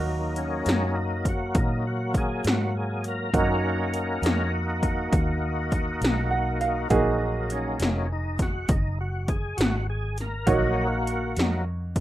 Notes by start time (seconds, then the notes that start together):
Already playing: D#2 F#3 A#3 D#4 F#4 A#4
0.36 C#4, closed hi-hat
0.66 F#2, snare, closed hi-hat
0.97 D#4
1.25 F#4, kick, closed hi-hat
1.55 A#2 D#4, kick, closed hi-hat
1.87 F#4
2.14 G#4, kick, closed hi-hat
2.44 G#2 F#4, snare, closed hi-hat
2.77 G#4
3.04 A#4, closed hi-hat
3.33 F#2 A#3 D#4 F#4 A#4, kick, closed hi-hat
3.38 C#4 A#4
3.94 closed hi-hat
4.22 F2, snare, closed hi-hat
4.83 kick, closed hi-hat
5.13 D#2, kick, closed hi-hat
5.72 kick, closed hi-hat
6.01 B1, snare, closed hi-hat
6.31 F#5
6.61 F5, closed hi-hat
6.90 A#1 F#3 A#3 D#4 F#4 G#4, kick, closed hi-hat
7.50 C#4, closed hi-hat
7.80 F1 F#3 A#3 D#4, snare, closed hi-hat
8.12 D#4
8.39 F#4, kick, snare, closed hi-hat
8.69 F#1 D#4, kick, closed hi-hat
9.01 F#4
9.28 G#4, kick, closed hi-hat
9.57 G#1 F#4, snare, closed hi-hat
9.90 G#4
10.18 A#4, snare, closed hi-hat
10.47 A#1 F#3 A#3 D#4 F#4 C#5, kick, closed hi-hat
11.07 closed hi-hat
11.37 F2 F#3 A#3 D#4, snare, closed hi-hat
11.96 kick, closed hi-hat